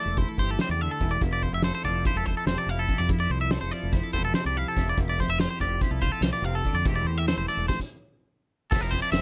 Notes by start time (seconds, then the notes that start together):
Already playing: E3 A3 E4 A4
0.00 D5
0.05 E1
0.17 E4 C5, kick, closed hi-hat
0.29 A4
0.38 G1 G4 C5, kick, closed hi-hat
0.51 A4
0.59 C3 C5, snare, closed hi-hat
0.69 E2 D5
0.79 D3 E5, closed hi-hat
0.91 A4
1.00 E1 E3, kick, closed hi-hat
1.11 D5
1.21 F1 F2 E4, kick, closed hi-hat
1.33 D5
1.42 C5, kick, closed hi-hat
1.53 F1 E5
1.62 A4 C5, snare, closed hi-hat
1.75 C5
1.84 F1 F3 D5, kick, closed hi-hat
2.05 E4 C5, kick, closed hi-hat
2.14 E1 A4
2.26 A4 C5, kick, closed hi-hat
2.37 A4
2.46 E1 C3 C5, snare, closed hi-hat
2.58 D5
2.66 F1 F5, snare, closed hi-hat
2.71 E4
2.79 A4
2.88 F2 E4, kick, closed hi-hat
2.98 F2 D5
3.09 F2 E4, kick, closed hi-hat
3.20 D5
3.30 C2 C5, closed hi-hat
3.41 E5
3.51 A4 C5, snare, closed hi-hat
3.61 F1 C5
3.71 F3 D5, snare, closed hi-hat
3.83 F1
3.92 E4 C5, kick, snare, closed hi-hat
4.03 A4
4.13 E1 A4 C5, kick, closed hi-hat
4.25 A4
4.34 C3 C5, snare, closed hi-hat
4.45 C2 D5
4.55 E4 F5, closed hi-hat
4.68 A4
4.77 F1 F2 E4, kick, snare, closed hi-hat
4.89 D5
4.97 F1 F2 E4, kick, closed hi-hat
5.09 D5
5.19 C5, kick, snare, closed hi-hat
5.27 F1 E5
5.38 F4 C5, snare, closed hi-hat
5.49 G4 C5
5.60 F1 F3 D5, kick, closed hi-hat
5.81 E4 C5, kick, closed hi-hat
5.91 C2 A4
6.02 F4 C5, kick, closed hi-hat
6.12 A4
6.21 C2 A#2 C5, snare, closed hi-hat
6.33 D5
6.42 F1 C3 F5, closed hi-hat
6.55 A4
6.65 D3, kick, closed hi-hat
6.73 F2 D5
6.85 E1 E3 A3 C4 E4 G4, kick, closed hi-hat
6.96 D5
7.04 E2 C5, closed hi-hat
7.18 E5
7.28 A4 C5, snare, closed hi-hat
7.37 E1 C5
7.48 A3 D5, snare, closed hi-hat
7.57 E1
7.68 C5, kick, snare, closed hi-hat
7.80 kick, crash
8.71 F1 F2 F3 C4 A4, kick, crash
8.76 E4 A4
8.80 F1 A#4
8.91 E4 C5, kick, closed hi-hat
9.02 D5
9.12 E1 C4 E5, snare, closed hi-hat